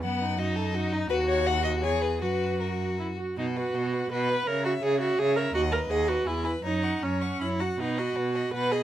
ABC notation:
X:1
M:3/4
L:1/8
Q:1/4=164
K:Bmix
V:1 name="Violin"
f2 d3 z | [K:B] B c f d c B | B2 A2 z2 | d f d f d f |
e c e c e c | f d f d g b | a c' a c' b a | f b f b f b |]
V:2 name="Violin"
B, D F A F D | [K:B] F2 F2 G2 | F2 F3 z | F B F B F B |
c e c e c e | d B d B G B | c f c f c f | B d B d B d |]
V:3 name="Viola"
B,2 D2 D2 | [K:B] F4 G2 | F4 E F | D F3 B2 |
A F G F G A | F A G F E E | D2 C2 E F | D F3 B G |]
V:4 name="Cello" clef=bass
F,,6 | [K:B] D,,4 E,,2 | F,,4- F,, z | B,,2 B,,2 B,,2 |
C,2 C,2 C,2 | D,,2 D,,2 E,,2 | F,,2 F,,2 F,,2 | B,,2 B,,2 B,,2 |]